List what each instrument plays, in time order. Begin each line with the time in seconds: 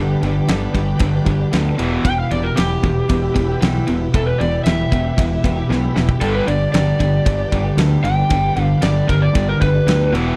Already playing: fingered electric bass G1, distorted electric guitar G2 D3, twelve-string acoustic guitar G2 D3, tonewheel organ D4 G4 B4
0.00 twelve-string acoustic guitar G3 B3 D4 G4
0.23 fingered electric bass G1, distorted electric guitar G2 D3, twelve-string acoustic guitar G3 B3 D4 G4, ride
0.48 fingered electric bass G1, distorted electric guitar G2 D3, twelve-string acoustic guitar G2 D3 G3 B3 D4 G4, snare, ride
0.74 fingered electric bass G1, distorted electric guitar G2 D3, twelve-string acoustic guitar G3 B3 D4 G4, kick, ride
0.99 fingered electric bass G1, distorted electric guitar G2 D3, kick, ride
1.14 twelve-string acoustic guitar G3 B3 D4 G4
1.26 fingered electric bass G1, distorted electric guitar G2 D3, twelve-string acoustic guitar G3 B3 D4 G4, kick, ride
1.40 twelve-string acoustic guitar G3 B3 D4 G4
1.53 fingered electric bass D2, distorted electric guitar G2 D3, twelve-string acoustic guitar G2 D3 G3 B3 D4 G4, snare, ride
1.78 fingered electric bass E1, distorted electric guitar E2 B2 E3, twelve-string acoustic guitar G3 B3, tonewheel organ E4 G4 B4, ride
1.82 twelve-string acoustic guitar E4 G4
1.92 twelve-string acoustic guitar B3 E4 G4
2.04 fingered electric bass E1, distorted electric guitar E2 B2, twelve-string acoustic guitar E3 G3 B3 E4 G4, electric slide guitar G5, kick, ride
2.20 electric slide guitar F5
2.30 fingered electric bass E1, distorted electric guitar E2 B2, twelve-string acoustic guitar G3 B3 E4 G4, electric slide guitar D5, ride
2.43 electric slide guitar A#4
2.56 fingered electric bass E1, distorted electric guitar E2 B2, twelve-string acoustic guitar E3 G3 B3 E4 G4, electric slide guitar G4, snare, ride
2.83 fingered electric bass E1, distorted electric guitar E2 B2, twelve-string acoustic guitar G3 B3 E4, kick, ride
2.87 twelve-string acoustic guitar G4
3.09 fingered electric bass E1, distorted electric guitar E2 B2, kick, ride
3.24 twelve-string acoustic guitar B3 E4 G4
3.34 fingered electric bass E1, distorted electric guitar E2 B2, twelve-string acoustic guitar G3 B3 E4, kick, ride
3.39 twelve-string acoustic guitar G4
3.48 twelve-string acoustic guitar B3 E4 G4
3.61 fingered electric bass B1, distorted electric guitar E2 B2, twelve-string acoustic guitar E3 G3 B3 E4 G4, snare, ride
3.87 fingered electric bass E1, distorted electric guitar E2 B2, twelve-string acoustic guitar G3 B3 E4 G4, ride
4.02 twelve-string acoustic guitar B3 E4 G4
4.14 fingered electric bass E1, distorted electric guitar E2 B2, twelve-string acoustic guitar E3 G3 B3 E4 G4, electric slide guitar A4, kick, ride
4.26 electric slide guitar B4
4.38 fingered electric bass E1, distorted electric guitar E2 B2, twelve-string acoustic guitar G3 B3 E4, electric slide guitar D5, ride
4.42 twelve-string acoustic guitar G4
4.64 fingered electric bass E1, distorted electric guitar E2 B2, twelve-string acoustic guitar E3 G3 B3 G4, electric slide guitar E5, snare, ride
4.68 twelve-string acoustic guitar E4
4.91 fingered electric bass E1, distorted electric guitar E2 B2, twelve-string acoustic guitar G3 B3 E4, kick, ride
4.96 twelve-string acoustic guitar G4
5.18 fingered electric bass E1, distorted electric guitar E2 B2, kick, ride
5.31 twelve-string acoustic guitar B3 E4 G4
5.43 fingered electric bass E1, distorted electric guitar E2 B2, twelve-string acoustic guitar G3 B3 E4 G4, kick, ride
5.56 twelve-string acoustic guitar B3 E4 G4
5.69 fingered electric bass B1, distorted electric guitar E2 B2, twelve-string acoustic guitar E3 G3 B3 E4 G4, snare
5.95 fingered electric bass E1, distorted electric guitar E2 B2, twelve-string acoustic guitar G3 B3 E4 G4, snare
6.09 twelve-string acoustic guitar B3 E4 G4, kick
6.19 fingered electric bass G1, twelve-string acoustic guitar G2 D3 G3 B3 D4 G4, distorted electric guitar G2 D3 G3, tonewheel organ D4 G4 B4, electric slide guitar A4, kick, ride
6.34 electric slide guitar B4
6.45 fingered electric bass G1, distorted electric guitar G2 D3, twelve-string acoustic guitar G3 B3 D4 G4, electric slide guitar D5, ride
6.72 fingered electric bass G1, twelve-string acoustic guitar G2 D3 G3 B3 D4 G4, distorted electric guitar G2 D3, electric slide guitar D5, snare, ride
6.98 fingered electric bass G1, distorted electric guitar G2 D3, twelve-string acoustic guitar G3 B3 D4 G4, kick, ride
7.26 fingered electric bass G1, distorted electric guitar G2 D3, kick, ride
7.38 twelve-string acoustic guitar G3 B3 D4 G4
7.51 fingered electric bass G1, distorted electric guitar G2 D3, twelve-string acoustic guitar G3 B3 D4 G4, kick, ride
7.63 twelve-string acoustic guitar G3 B3 D4 G4
7.77 fingered electric bass D2, twelve-string acoustic guitar G2 D3 G3 B3 D4 G4, distorted electric guitar G2 D3, snare, ride
8.03 fingered electric bass G1, distorted electric guitar G2 D3, twelve-string acoustic guitar G3 B3 D4 G4, electric slide guitar G5, ride
8.17 twelve-string acoustic guitar G3 B3 D4 G4
8.30 fingered electric bass G1, twelve-string acoustic guitar G2 D3 G3 B3 D4 G4, distorted electric guitar G2 D3, kick, ride
8.56 fingered electric bass G1, distorted electric guitar G2 D3, twelve-string acoustic guitar G3 B3 D4, ride
8.61 twelve-string acoustic guitar G4, electric slide guitar F5
8.82 fingered electric bass G1, distorted electric guitar G2 D3, twelve-string acoustic guitar G2 D3 G3 B3 D4 G4, electric slide guitar D5, snare, ride
9.08 fingered electric bass G1, distorted electric guitar G2 D3, twelve-string acoustic guitar G3 B3 D4 G4, electric slide guitar A#4, kick, ride
9.22 electric slide guitar D5
9.35 fingered electric bass G1, distorted electric guitar G2 D3, kick, ride
9.48 twelve-string acoustic guitar G3 B3 D4 G4, electric slide guitar A#4
9.60 fingered electric bass G1, distorted electric guitar G2 D3, twelve-string acoustic guitar G3 B3 D4 G4, electric slide guitar B4, kick, ride
9.73 twelve-string acoustic guitar G3 B3 D4 G4
9.87 fingered electric bass D2, twelve-string acoustic guitar G2 D3 G3 B3 D4 G4, distorted electric guitar G2 D3, snare, ride
10.11 fingered electric bass E1, distorted electric guitar E2 B2 E3, twelve-string acoustic guitar G3, tonewheel organ E4 G4 B4, ride
10.15 twelve-string acoustic guitar B3 E4 G4
10.26 twelve-string acoustic guitar B3 E4 G4